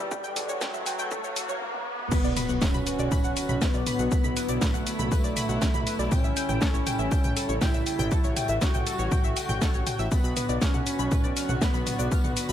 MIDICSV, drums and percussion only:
0, 0, Header, 1, 2, 480
1, 0, Start_track
1, 0, Key_signature, 2, "minor"
1, 0, Tempo, 500000
1, 111, Time_signature, 4, 2, 24, 8
1, 12024, End_track
2, 0, Start_track
2, 0, Title_t, "Drums"
2, 109, Note_on_c, 9, 82, 74
2, 110, Note_on_c, 9, 36, 115
2, 205, Note_off_c, 9, 82, 0
2, 206, Note_off_c, 9, 36, 0
2, 230, Note_on_c, 9, 82, 43
2, 326, Note_off_c, 9, 82, 0
2, 348, Note_on_c, 9, 45, 98
2, 348, Note_on_c, 9, 46, 105
2, 348, Note_on_c, 9, 82, 71
2, 444, Note_off_c, 9, 45, 0
2, 444, Note_off_c, 9, 46, 0
2, 444, Note_off_c, 9, 82, 0
2, 469, Note_on_c, 9, 82, 50
2, 565, Note_off_c, 9, 82, 0
2, 589, Note_on_c, 9, 38, 127
2, 589, Note_on_c, 9, 82, 70
2, 590, Note_on_c, 9, 36, 113
2, 685, Note_off_c, 9, 38, 0
2, 685, Note_off_c, 9, 82, 0
2, 686, Note_off_c, 9, 36, 0
2, 710, Note_on_c, 9, 45, 100
2, 710, Note_on_c, 9, 82, 50
2, 806, Note_off_c, 9, 45, 0
2, 806, Note_off_c, 9, 82, 0
2, 829, Note_on_c, 9, 46, 94
2, 829, Note_on_c, 9, 82, 75
2, 925, Note_off_c, 9, 46, 0
2, 925, Note_off_c, 9, 82, 0
2, 950, Note_on_c, 9, 82, 48
2, 1046, Note_off_c, 9, 82, 0
2, 1069, Note_on_c, 9, 45, 100
2, 1069, Note_on_c, 9, 82, 73
2, 1070, Note_on_c, 9, 36, 115
2, 1165, Note_off_c, 9, 45, 0
2, 1165, Note_off_c, 9, 82, 0
2, 1166, Note_off_c, 9, 36, 0
2, 1190, Note_on_c, 9, 82, 49
2, 1286, Note_off_c, 9, 82, 0
2, 1309, Note_on_c, 9, 46, 107
2, 1309, Note_on_c, 9, 82, 72
2, 1405, Note_off_c, 9, 46, 0
2, 1405, Note_off_c, 9, 82, 0
2, 1430, Note_on_c, 9, 45, 97
2, 1430, Note_on_c, 9, 82, 48
2, 1526, Note_off_c, 9, 45, 0
2, 1526, Note_off_c, 9, 82, 0
2, 1550, Note_on_c, 9, 48, 56
2, 1646, Note_off_c, 9, 48, 0
2, 1670, Note_on_c, 9, 48, 64
2, 1766, Note_off_c, 9, 48, 0
2, 1912, Note_on_c, 9, 45, 90
2, 2008, Note_off_c, 9, 45, 0
2, 2031, Note_on_c, 9, 36, 123
2, 2031, Note_on_c, 9, 49, 108
2, 2031, Note_on_c, 9, 82, 75
2, 2032, Note_on_c, 9, 54, 92
2, 2127, Note_off_c, 9, 36, 0
2, 2127, Note_off_c, 9, 49, 0
2, 2127, Note_off_c, 9, 82, 0
2, 2128, Note_off_c, 9, 54, 0
2, 2152, Note_on_c, 9, 82, 48
2, 2248, Note_off_c, 9, 82, 0
2, 2270, Note_on_c, 9, 54, 65
2, 2271, Note_on_c, 9, 45, 93
2, 2271, Note_on_c, 9, 46, 103
2, 2271, Note_on_c, 9, 82, 73
2, 2366, Note_off_c, 9, 54, 0
2, 2367, Note_off_c, 9, 45, 0
2, 2367, Note_off_c, 9, 46, 0
2, 2367, Note_off_c, 9, 82, 0
2, 2393, Note_on_c, 9, 82, 48
2, 2489, Note_off_c, 9, 82, 0
2, 2511, Note_on_c, 9, 38, 127
2, 2511, Note_on_c, 9, 82, 70
2, 2512, Note_on_c, 9, 36, 120
2, 2515, Note_off_c, 9, 38, 0
2, 2515, Note_on_c, 9, 38, 111
2, 2515, Note_on_c, 9, 54, 95
2, 2607, Note_off_c, 9, 82, 0
2, 2608, Note_off_c, 9, 36, 0
2, 2611, Note_off_c, 9, 38, 0
2, 2611, Note_off_c, 9, 54, 0
2, 2632, Note_on_c, 9, 45, 89
2, 2632, Note_on_c, 9, 82, 45
2, 2728, Note_off_c, 9, 45, 0
2, 2728, Note_off_c, 9, 82, 0
2, 2748, Note_on_c, 9, 54, 64
2, 2751, Note_on_c, 9, 46, 92
2, 2751, Note_on_c, 9, 82, 73
2, 2844, Note_off_c, 9, 54, 0
2, 2847, Note_off_c, 9, 46, 0
2, 2847, Note_off_c, 9, 82, 0
2, 2872, Note_on_c, 9, 82, 48
2, 2968, Note_off_c, 9, 82, 0
2, 2991, Note_on_c, 9, 45, 99
2, 2991, Note_on_c, 9, 54, 95
2, 2991, Note_on_c, 9, 82, 72
2, 2992, Note_on_c, 9, 36, 119
2, 3087, Note_off_c, 9, 45, 0
2, 3087, Note_off_c, 9, 54, 0
2, 3087, Note_off_c, 9, 82, 0
2, 3088, Note_off_c, 9, 36, 0
2, 3111, Note_on_c, 9, 82, 48
2, 3207, Note_off_c, 9, 82, 0
2, 3230, Note_on_c, 9, 54, 69
2, 3231, Note_on_c, 9, 46, 108
2, 3231, Note_on_c, 9, 82, 69
2, 3326, Note_off_c, 9, 54, 0
2, 3327, Note_off_c, 9, 46, 0
2, 3327, Note_off_c, 9, 82, 0
2, 3352, Note_on_c, 9, 45, 88
2, 3352, Note_on_c, 9, 82, 47
2, 3448, Note_off_c, 9, 45, 0
2, 3448, Note_off_c, 9, 82, 0
2, 3471, Note_on_c, 9, 36, 117
2, 3471, Note_on_c, 9, 38, 123
2, 3471, Note_on_c, 9, 82, 68
2, 3472, Note_on_c, 9, 54, 95
2, 3473, Note_off_c, 9, 38, 0
2, 3473, Note_on_c, 9, 38, 114
2, 3567, Note_off_c, 9, 36, 0
2, 3567, Note_off_c, 9, 82, 0
2, 3568, Note_off_c, 9, 54, 0
2, 3569, Note_off_c, 9, 38, 0
2, 3591, Note_on_c, 9, 38, 39
2, 3591, Note_on_c, 9, 82, 44
2, 3687, Note_off_c, 9, 38, 0
2, 3687, Note_off_c, 9, 82, 0
2, 3710, Note_on_c, 9, 54, 63
2, 3711, Note_on_c, 9, 45, 91
2, 3711, Note_on_c, 9, 46, 95
2, 3711, Note_on_c, 9, 82, 70
2, 3806, Note_off_c, 9, 54, 0
2, 3807, Note_off_c, 9, 45, 0
2, 3807, Note_off_c, 9, 46, 0
2, 3807, Note_off_c, 9, 82, 0
2, 3831, Note_on_c, 9, 42, 44
2, 3831, Note_on_c, 9, 82, 50
2, 3927, Note_off_c, 9, 42, 0
2, 3927, Note_off_c, 9, 82, 0
2, 3950, Note_on_c, 9, 82, 74
2, 3951, Note_on_c, 9, 36, 124
2, 3952, Note_on_c, 9, 54, 77
2, 4046, Note_off_c, 9, 82, 0
2, 4047, Note_off_c, 9, 36, 0
2, 4048, Note_off_c, 9, 54, 0
2, 4071, Note_on_c, 9, 45, 85
2, 4071, Note_on_c, 9, 82, 43
2, 4167, Note_off_c, 9, 45, 0
2, 4167, Note_off_c, 9, 82, 0
2, 4191, Note_on_c, 9, 46, 112
2, 4191, Note_on_c, 9, 82, 69
2, 4195, Note_on_c, 9, 54, 72
2, 4287, Note_off_c, 9, 46, 0
2, 4287, Note_off_c, 9, 82, 0
2, 4291, Note_off_c, 9, 54, 0
2, 4306, Note_on_c, 9, 42, 49
2, 4312, Note_on_c, 9, 82, 48
2, 4402, Note_off_c, 9, 42, 0
2, 4408, Note_off_c, 9, 82, 0
2, 4428, Note_on_c, 9, 38, 113
2, 4430, Note_on_c, 9, 54, 96
2, 4431, Note_off_c, 9, 38, 0
2, 4431, Note_on_c, 9, 36, 118
2, 4431, Note_on_c, 9, 38, 123
2, 4431, Note_on_c, 9, 45, 89
2, 4431, Note_on_c, 9, 82, 69
2, 4526, Note_off_c, 9, 54, 0
2, 4527, Note_off_c, 9, 36, 0
2, 4527, Note_off_c, 9, 38, 0
2, 4527, Note_off_c, 9, 45, 0
2, 4527, Note_off_c, 9, 82, 0
2, 4552, Note_on_c, 9, 82, 47
2, 4558, Note_on_c, 9, 42, 44
2, 4648, Note_off_c, 9, 82, 0
2, 4654, Note_off_c, 9, 42, 0
2, 4671, Note_on_c, 9, 46, 98
2, 4671, Note_on_c, 9, 82, 68
2, 4675, Note_on_c, 9, 54, 76
2, 4767, Note_off_c, 9, 46, 0
2, 4767, Note_off_c, 9, 82, 0
2, 4771, Note_off_c, 9, 54, 0
2, 4793, Note_on_c, 9, 45, 91
2, 4793, Note_on_c, 9, 82, 45
2, 4889, Note_off_c, 9, 45, 0
2, 4889, Note_off_c, 9, 82, 0
2, 4911, Note_on_c, 9, 36, 118
2, 4912, Note_on_c, 9, 82, 72
2, 4913, Note_on_c, 9, 54, 86
2, 5007, Note_off_c, 9, 36, 0
2, 5008, Note_off_c, 9, 82, 0
2, 5009, Note_off_c, 9, 54, 0
2, 5032, Note_on_c, 9, 82, 47
2, 5128, Note_off_c, 9, 82, 0
2, 5149, Note_on_c, 9, 54, 66
2, 5152, Note_on_c, 9, 45, 91
2, 5152, Note_on_c, 9, 46, 107
2, 5152, Note_on_c, 9, 82, 73
2, 5245, Note_off_c, 9, 54, 0
2, 5248, Note_off_c, 9, 45, 0
2, 5248, Note_off_c, 9, 46, 0
2, 5248, Note_off_c, 9, 82, 0
2, 5273, Note_on_c, 9, 82, 45
2, 5369, Note_off_c, 9, 82, 0
2, 5387, Note_on_c, 9, 38, 119
2, 5391, Note_on_c, 9, 36, 119
2, 5393, Note_off_c, 9, 38, 0
2, 5393, Note_on_c, 9, 38, 123
2, 5393, Note_on_c, 9, 54, 83
2, 5393, Note_on_c, 9, 82, 65
2, 5487, Note_off_c, 9, 36, 0
2, 5489, Note_off_c, 9, 38, 0
2, 5489, Note_off_c, 9, 54, 0
2, 5489, Note_off_c, 9, 82, 0
2, 5513, Note_on_c, 9, 45, 90
2, 5513, Note_on_c, 9, 82, 45
2, 5609, Note_off_c, 9, 45, 0
2, 5609, Note_off_c, 9, 82, 0
2, 5633, Note_on_c, 9, 46, 96
2, 5633, Note_on_c, 9, 54, 67
2, 5633, Note_on_c, 9, 82, 69
2, 5729, Note_off_c, 9, 46, 0
2, 5729, Note_off_c, 9, 54, 0
2, 5729, Note_off_c, 9, 82, 0
2, 5748, Note_on_c, 9, 38, 45
2, 5753, Note_on_c, 9, 82, 46
2, 5844, Note_off_c, 9, 38, 0
2, 5849, Note_off_c, 9, 82, 0
2, 5868, Note_on_c, 9, 54, 81
2, 5871, Note_on_c, 9, 36, 127
2, 5873, Note_on_c, 9, 45, 95
2, 5873, Note_on_c, 9, 82, 72
2, 5964, Note_off_c, 9, 54, 0
2, 5967, Note_off_c, 9, 36, 0
2, 5969, Note_off_c, 9, 45, 0
2, 5969, Note_off_c, 9, 82, 0
2, 5994, Note_on_c, 9, 82, 41
2, 6090, Note_off_c, 9, 82, 0
2, 6106, Note_on_c, 9, 54, 66
2, 6112, Note_on_c, 9, 46, 112
2, 6112, Note_on_c, 9, 82, 67
2, 6202, Note_off_c, 9, 54, 0
2, 6208, Note_off_c, 9, 46, 0
2, 6208, Note_off_c, 9, 82, 0
2, 6233, Note_on_c, 9, 45, 90
2, 6233, Note_on_c, 9, 82, 45
2, 6329, Note_off_c, 9, 45, 0
2, 6329, Note_off_c, 9, 82, 0
2, 6343, Note_on_c, 9, 38, 127
2, 6351, Note_on_c, 9, 36, 123
2, 6352, Note_off_c, 9, 38, 0
2, 6352, Note_on_c, 9, 38, 124
2, 6352, Note_on_c, 9, 82, 66
2, 6354, Note_on_c, 9, 54, 83
2, 6447, Note_off_c, 9, 36, 0
2, 6448, Note_off_c, 9, 38, 0
2, 6448, Note_off_c, 9, 82, 0
2, 6450, Note_off_c, 9, 54, 0
2, 6472, Note_on_c, 9, 82, 47
2, 6568, Note_off_c, 9, 82, 0
2, 6592, Note_on_c, 9, 45, 95
2, 6592, Note_on_c, 9, 46, 97
2, 6592, Note_on_c, 9, 54, 68
2, 6592, Note_on_c, 9, 82, 67
2, 6688, Note_off_c, 9, 45, 0
2, 6688, Note_off_c, 9, 46, 0
2, 6688, Note_off_c, 9, 54, 0
2, 6688, Note_off_c, 9, 82, 0
2, 6712, Note_on_c, 9, 82, 44
2, 6808, Note_off_c, 9, 82, 0
2, 6825, Note_on_c, 9, 54, 90
2, 6831, Note_on_c, 9, 36, 121
2, 6832, Note_on_c, 9, 82, 70
2, 6921, Note_off_c, 9, 54, 0
2, 6927, Note_off_c, 9, 36, 0
2, 6928, Note_off_c, 9, 82, 0
2, 6952, Note_on_c, 9, 45, 90
2, 6952, Note_on_c, 9, 82, 43
2, 7048, Note_off_c, 9, 45, 0
2, 7048, Note_off_c, 9, 82, 0
2, 7071, Note_on_c, 9, 46, 114
2, 7071, Note_on_c, 9, 82, 67
2, 7072, Note_on_c, 9, 54, 75
2, 7167, Note_off_c, 9, 46, 0
2, 7167, Note_off_c, 9, 82, 0
2, 7168, Note_off_c, 9, 54, 0
2, 7192, Note_on_c, 9, 82, 44
2, 7288, Note_off_c, 9, 82, 0
2, 7307, Note_on_c, 9, 38, 118
2, 7311, Note_off_c, 9, 38, 0
2, 7311, Note_on_c, 9, 36, 122
2, 7311, Note_on_c, 9, 38, 114
2, 7311, Note_on_c, 9, 45, 87
2, 7311, Note_on_c, 9, 54, 89
2, 7311, Note_on_c, 9, 82, 64
2, 7407, Note_off_c, 9, 36, 0
2, 7407, Note_off_c, 9, 38, 0
2, 7407, Note_off_c, 9, 45, 0
2, 7407, Note_off_c, 9, 54, 0
2, 7407, Note_off_c, 9, 82, 0
2, 7423, Note_on_c, 9, 38, 49
2, 7431, Note_on_c, 9, 82, 42
2, 7519, Note_off_c, 9, 38, 0
2, 7527, Note_off_c, 9, 82, 0
2, 7545, Note_on_c, 9, 54, 66
2, 7550, Note_on_c, 9, 46, 95
2, 7550, Note_on_c, 9, 82, 68
2, 7641, Note_off_c, 9, 54, 0
2, 7646, Note_off_c, 9, 46, 0
2, 7646, Note_off_c, 9, 82, 0
2, 7671, Note_on_c, 9, 45, 93
2, 7671, Note_on_c, 9, 82, 46
2, 7678, Note_on_c, 9, 42, 49
2, 7767, Note_off_c, 9, 45, 0
2, 7767, Note_off_c, 9, 82, 0
2, 7774, Note_off_c, 9, 42, 0
2, 7785, Note_on_c, 9, 54, 87
2, 7790, Note_on_c, 9, 82, 66
2, 7791, Note_on_c, 9, 36, 121
2, 7881, Note_off_c, 9, 54, 0
2, 7886, Note_off_c, 9, 82, 0
2, 7887, Note_off_c, 9, 36, 0
2, 7911, Note_on_c, 9, 82, 42
2, 8007, Note_off_c, 9, 82, 0
2, 8030, Note_on_c, 9, 54, 66
2, 8031, Note_on_c, 9, 45, 87
2, 8031, Note_on_c, 9, 46, 113
2, 8031, Note_on_c, 9, 82, 63
2, 8126, Note_off_c, 9, 54, 0
2, 8127, Note_off_c, 9, 45, 0
2, 8127, Note_off_c, 9, 46, 0
2, 8127, Note_off_c, 9, 82, 0
2, 8142, Note_on_c, 9, 42, 43
2, 8151, Note_on_c, 9, 82, 44
2, 8238, Note_off_c, 9, 42, 0
2, 8247, Note_off_c, 9, 82, 0
2, 8268, Note_on_c, 9, 54, 99
2, 8270, Note_on_c, 9, 38, 119
2, 8270, Note_on_c, 9, 82, 66
2, 8271, Note_on_c, 9, 36, 120
2, 8273, Note_off_c, 9, 38, 0
2, 8273, Note_on_c, 9, 38, 114
2, 8364, Note_off_c, 9, 54, 0
2, 8366, Note_off_c, 9, 82, 0
2, 8367, Note_off_c, 9, 36, 0
2, 8369, Note_off_c, 9, 38, 0
2, 8391, Note_on_c, 9, 45, 85
2, 8391, Note_on_c, 9, 82, 42
2, 8397, Note_on_c, 9, 42, 40
2, 8487, Note_off_c, 9, 45, 0
2, 8487, Note_off_c, 9, 82, 0
2, 8493, Note_off_c, 9, 42, 0
2, 8511, Note_on_c, 9, 46, 96
2, 8511, Note_on_c, 9, 82, 67
2, 8515, Note_on_c, 9, 54, 76
2, 8607, Note_off_c, 9, 46, 0
2, 8607, Note_off_c, 9, 82, 0
2, 8611, Note_off_c, 9, 54, 0
2, 8632, Note_on_c, 9, 82, 43
2, 8728, Note_off_c, 9, 82, 0
2, 8751, Note_on_c, 9, 45, 94
2, 8751, Note_on_c, 9, 82, 67
2, 8752, Note_on_c, 9, 36, 123
2, 8758, Note_on_c, 9, 54, 90
2, 8847, Note_off_c, 9, 45, 0
2, 8847, Note_off_c, 9, 82, 0
2, 8848, Note_off_c, 9, 36, 0
2, 8854, Note_off_c, 9, 54, 0
2, 8871, Note_on_c, 9, 82, 43
2, 8967, Note_off_c, 9, 82, 0
2, 8991, Note_on_c, 9, 46, 115
2, 8991, Note_on_c, 9, 82, 67
2, 8998, Note_on_c, 9, 54, 72
2, 9087, Note_off_c, 9, 46, 0
2, 9087, Note_off_c, 9, 82, 0
2, 9094, Note_off_c, 9, 54, 0
2, 9112, Note_on_c, 9, 45, 87
2, 9112, Note_on_c, 9, 82, 43
2, 9208, Note_off_c, 9, 45, 0
2, 9208, Note_off_c, 9, 82, 0
2, 9231, Note_on_c, 9, 38, 111
2, 9231, Note_on_c, 9, 82, 65
2, 9232, Note_on_c, 9, 36, 116
2, 9234, Note_off_c, 9, 38, 0
2, 9234, Note_on_c, 9, 38, 105
2, 9234, Note_on_c, 9, 54, 86
2, 9327, Note_off_c, 9, 82, 0
2, 9328, Note_off_c, 9, 36, 0
2, 9330, Note_off_c, 9, 38, 0
2, 9330, Note_off_c, 9, 54, 0
2, 9351, Note_on_c, 9, 82, 43
2, 9447, Note_off_c, 9, 82, 0
2, 9469, Note_on_c, 9, 54, 68
2, 9471, Note_on_c, 9, 45, 89
2, 9471, Note_on_c, 9, 46, 98
2, 9471, Note_on_c, 9, 82, 66
2, 9565, Note_off_c, 9, 54, 0
2, 9567, Note_off_c, 9, 45, 0
2, 9567, Note_off_c, 9, 46, 0
2, 9567, Note_off_c, 9, 82, 0
2, 9588, Note_on_c, 9, 38, 42
2, 9592, Note_on_c, 9, 82, 44
2, 9684, Note_off_c, 9, 38, 0
2, 9688, Note_off_c, 9, 82, 0
2, 9709, Note_on_c, 9, 54, 87
2, 9712, Note_on_c, 9, 36, 123
2, 9712, Note_on_c, 9, 82, 69
2, 9805, Note_off_c, 9, 54, 0
2, 9808, Note_off_c, 9, 36, 0
2, 9808, Note_off_c, 9, 82, 0
2, 9832, Note_on_c, 9, 82, 42
2, 9928, Note_off_c, 9, 82, 0
2, 9950, Note_on_c, 9, 54, 69
2, 9951, Note_on_c, 9, 45, 89
2, 9951, Note_on_c, 9, 46, 106
2, 9951, Note_on_c, 9, 82, 66
2, 10046, Note_off_c, 9, 54, 0
2, 10047, Note_off_c, 9, 45, 0
2, 10047, Note_off_c, 9, 46, 0
2, 10047, Note_off_c, 9, 82, 0
2, 10072, Note_on_c, 9, 82, 44
2, 10168, Note_off_c, 9, 82, 0
2, 10190, Note_on_c, 9, 38, 110
2, 10190, Note_on_c, 9, 54, 83
2, 10191, Note_off_c, 9, 38, 0
2, 10191, Note_on_c, 9, 36, 119
2, 10191, Note_on_c, 9, 38, 118
2, 10191, Note_on_c, 9, 82, 64
2, 10286, Note_off_c, 9, 54, 0
2, 10287, Note_off_c, 9, 36, 0
2, 10287, Note_off_c, 9, 38, 0
2, 10287, Note_off_c, 9, 82, 0
2, 10312, Note_on_c, 9, 45, 93
2, 10312, Note_on_c, 9, 82, 44
2, 10408, Note_off_c, 9, 45, 0
2, 10408, Note_off_c, 9, 82, 0
2, 10424, Note_on_c, 9, 54, 63
2, 10431, Note_on_c, 9, 46, 95
2, 10431, Note_on_c, 9, 82, 65
2, 10520, Note_off_c, 9, 54, 0
2, 10527, Note_off_c, 9, 46, 0
2, 10527, Note_off_c, 9, 82, 0
2, 10552, Note_on_c, 9, 82, 45
2, 10648, Note_off_c, 9, 82, 0
2, 10668, Note_on_c, 9, 54, 91
2, 10671, Note_on_c, 9, 36, 118
2, 10671, Note_on_c, 9, 45, 97
2, 10671, Note_on_c, 9, 82, 66
2, 10764, Note_off_c, 9, 54, 0
2, 10767, Note_off_c, 9, 36, 0
2, 10767, Note_off_c, 9, 45, 0
2, 10767, Note_off_c, 9, 82, 0
2, 10792, Note_on_c, 9, 82, 44
2, 10888, Note_off_c, 9, 82, 0
2, 10907, Note_on_c, 9, 54, 72
2, 10911, Note_on_c, 9, 46, 108
2, 10911, Note_on_c, 9, 82, 66
2, 11003, Note_off_c, 9, 54, 0
2, 11007, Note_off_c, 9, 46, 0
2, 11007, Note_off_c, 9, 82, 0
2, 11032, Note_on_c, 9, 45, 93
2, 11032, Note_on_c, 9, 82, 42
2, 11128, Note_off_c, 9, 45, 0
2, 11128, Note_off_c, 9, 82, 0
2, 11150, Note_on_c, 9, 38, 104
2, 11151, Note_on_c, 9, 36, 118
2, 11152, Note_off_c, 9, 38, 0
2, 11152, Note_on_c, 9, 38, 108
2, 11152, Note_on_c, 9, 82, 62
2, 11153, Note_on_c, 9, 54, 78
2, 11247, Note_off_c, 9, 36, 0
2, 11248, Note_off_c, 9, 38, 0
2, 11248, Note_off_c, 9, 82, 0
2, 11249, Note_off_c, 9, 54, 0
2, 11267, Note_on_c, 9, 38, 42
2, 11273, Note_on_c, 9, 82, 43
2, 11363, Note_off_c, 9, 38, 0
2, 11369, Note_off_c, 9, 82, 0
2, 11392, Note_on_c, 9, 45, 90
2, 11392, Note_on_c, 9, 46, 90
2, 11392, Note_on_c, 9, 82, 66
2, 11393, Note_on_c, 9, 54, 60
2, 11488, Note_off_c, 9, 45, 0
2, 11488, Note_off_c, 9, 46, 0
2, 11488, Note_off_c, 9, 82, 0
2, 11489, Note_off_c, 9, 54, 0
2, 11512, Note_on_c, 9, 82, 47
2, 11516, Note_on_c, 9, 42, 46
2, 11608, Note_off_c, 9, 82, 0
2, 11612, Note_off_c, 9, 42, 0
2, 11631, Note_on_c, 9, 36, 114
2, 11632, Note_on_c, 9, 82, 71
2, 11634, Note_on_c, 9, 54, 86
2, 11727, Note_off_c, 9, 36, 0
2, 11728, Note_off_c, 9, 82, 0
2, 11730, Note_off_c, 9, 54, 0
2, 11753, Note_on_c, 9, 45, 92
2, 11753, Note_on_c, 9, 82, 43
2, 11849, Note_off_c, 9, 45, 0
2, 11849, Note_off_c, 9, 82, 0
2, 11871, Note_on_c, 9, 46, 104
2, 11871, Note_on_c, 9, 82, 70
2, 11872, Note_on_c, 9, 54, 70
2, 11967, Note_off_c, 9, 46, 0
2, 11967, Note_off_c, 9, 82, 0
2, 11968, Note_off_c, 9, 54, 0
2, 11992, Note_on_c, 9, 82, 47
2, 12024, Note_off_c, 9, 82, 0
2, 12024, End_track
0, 0, End_of_file